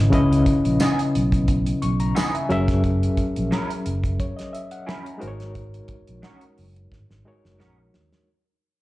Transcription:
Already playing: G#1 C#3 C#4 E4 B4 D#5
0.11 C#2 C#3 C#4 E4 B4 D#5, kick, closed hi-hat
0.33 closed hi-hat
0.46 kick, closed hi-hat
0.65 A#1, closed hi-hat
0.80 E3 B3 D#4 G#4, snare, tambourine
0.99 closed hi-hat
1.15 B1, closed hi-hat
1.32 kick, closed hi-hat
1.48 kick, closed hi-hat
1.66 closed hi-hat
1.82 B1 C#6, closed hi-hat
2.00 A#5, closed hi-hat
2.15 E3 B3 D#4 G#4 G#5, snare, tambourine
2.34 E5, closed hi-hat
2.49 F#1 F#3 C#4 G#4 A#4 E5, closed hi-hat
2.68 kick, snare, closed hi-hat
2.84 kick, closed hi-hat
3.03 closed hi-hat
3.17 kick, closed hi-hat
3.36 A#1, closed hi-hat
3.51 F#3 C#4 E4 A#4, snare
3.70 closed hi-hat
3.86 F#1, closed hi-hat
4.04 kick, closed hi-hat
4.20 C#5, kick, closed hi-hat
4.37 D#5, snare, closed hi-hat
4.53 E5, closed hi-hat
4.71 F#5, closed hi-hat
4.87 F#3 C#4 E4 A#4 G#5, snare
5.04 A#5, closed hi-hat
5.18 G#3 D#4 F#4 A#4 C5, closed hi-hat
5.22 G#1
5.27 C#5
5.40 snare, closed hi-hat
5.55 kick, closed hi-hat
5.74 closed hi-hat
5.88 kick, closed hi-hat
6.07 A#1, closed hi-hat
6.22 G#3 C#4 F#4 A#4, snare
6.41 closed hi-hat
6.58 F#1, open hi-hat
6.76 closed hi-hat
6.92 G#1, kick, snare
7.10 G#1, snare
7.25 G#3 D#4 F#4 A#4 C#5
7.45 F#1, snare
7.59 A#1 G#3 C#4 F#4 A#4, snare
7.94 D#2, snare
8.13 snare

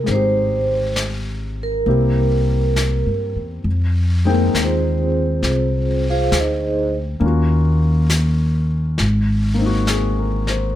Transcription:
Already playing: F4
0.04 G#3 C4, brush sweep, snare
0.08 G#1 D#4 C5
0.15 G4
0.96 snare, hi-hat pedal
1.63 A#4
1.86 C2 A#3 C4 E4 G4, brush sweep
2.76 snare, hi-hat pedal
3.06 G2
3.36 E2
3.64 F2, brush sweep
4.25 G#3 A#3 C4 D#4 G5
4.29 A#4
4.54 D#2, snare, hi-hat pedal
4.62 C4 F4 G#4 C5
5.42 C2, brush sweep, snare
6.10 F4 G#4 C5 F5
6.32 D2, snare, hi-hat pedal
6.39 D#4 G#4 C5 D#5
7.20 D#2 A#3 C#4, brush sweep
7.24 F4 F#4
8.10 snare, hi-hat pedal
8.98 G#1, brush sweep, snare
9.54 A#3
9.58 C4 D#4
9.66 F#4
9.87 G#4, snare, hi-hat pedal
10.19 A#4
10.47 C5, snare

